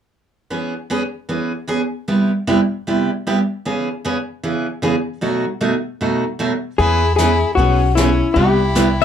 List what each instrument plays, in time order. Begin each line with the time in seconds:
0.50 steel-string acoustic guitar E3 B3 C#4 G#4
0.90 steel-string acoustic guitar E3 B3 C#4 G#4
1.29 steel-string acoustic guitar E3 B3 C#4 G#4
1.68 steel-string acoustic guitar E3 B3 C#4 G#4
2.08 steel-string acoustic guitar C3 G3 B3 E4 G4
2.47 steel-string acoustic guitar C3 G3 B3 E4 G4
2.87 steel-string acoustic guitar C3 G3 B3 E4 G4
3.27 steel-string acoustic guitar C3 G3 B3 E4 G4
3.65 steel-string acoustic guitar C#3 E3 B3 C#4 G#4
4.05 steel-string acoustic guitar C#3 E3 B3 C#4 G#4
4.43 steel-string acoustic guitar C#3 E3 B3 C#4 G#4
4.82 steel-string acoustic guitar C#3 E3 B3 C#4 G#4
5.21 steel-string acoustic guitar B2 F#3 A3 D#4 F#4
5.61 steel-string acoustic guitar B2 F#3 A3 D#4 F#4
6.01 steel-string acoustic guitar B2 F#3 A3 D#4 F#4
6.39 steel-string acoustic guitar B2 F#3 A3 D#4 F#4
6.79 upright bass E2, steel-string acoustic guitar E3 B3 C#4 G#4, fiddle E4, brush sweep, kick
7.17 steel-string acoustic guitar E3 B3 C#4 G#4, fiddle E4, snare, hi-hat pedal
7.55 upright bass B1, steel-string acoustic guitar E3 B3 C#4, fiddle C#4, hollow-body jazz guitar F#4, brush sweep, kick
7.59 steel-string acoustic guitar G#4
7.94 steel-string acoustic guitar E3 B3 C#4, fiddle C#4, hollow-body jazz guitar E4, snare, hi-hat pedal
7.98 steel-string acoustic guitar G#4
8.34 upright bass C2, steel-string acoustic guitar C3 G3 B3 E4 G4, fiddle E4, brush sweep, kick
8.75 steel-string acoustic guitar C3 G3 B3 E4 G4, snare, hi-hat pedal
9.01 electric slide guitar E5, snare